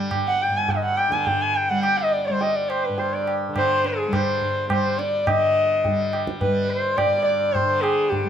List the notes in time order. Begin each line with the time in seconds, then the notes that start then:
Already playing: G2 D3 G3
0.11 tabla na, tabla ge
0.27 F#5
0.42 G5
0.49 G2
0.57 G#5
0.68 D#5, tabla tin, tabla ge
0.85 F#5
0.97 G5, tabla na
1.09 D3 G#5, tabla ke
1.27 G5, tabla tin, tabla ge
1.41 G#5
1.56 G5
1.69 G3 F#5
1.83 G5, tabla na
1.98 D#5
2.12 D5
2.27 G3 C5
2.41 D#5, tabla tin
2.56 D5
2.69 C5, tabla na
2.85 B4
2.89 G2
2.98 C5, tabla tin
3.13 D5
3.27 tabla na
3.49 D3
3.56 C5, tabla na, tabla ge
3.84 G#4, tabla te
4.08 G3
4.13 C5, tabla na, tabla ge
4.42 tabla ge
4.69 G3 C5, tabla na, tabla ge
4.99 D5, tabla te
5.27 D3 D#5, tabla na, tabla ge
5.85 G3, tabla tin, tabla ge
6.13 tabla na
6.27 tabla ke
6.41 B4, tabla tin, tabla ge
6.47 G3
6.70 C5
6.97 D5, tabla na, tabla ge
7.06 G2
7.25 D5
7.53 C5, tabla tin, tabla ge
7.66 D3
7.81 G#4, tabla na
8.10 G4, tabla tin, tabla ge
8.24 G3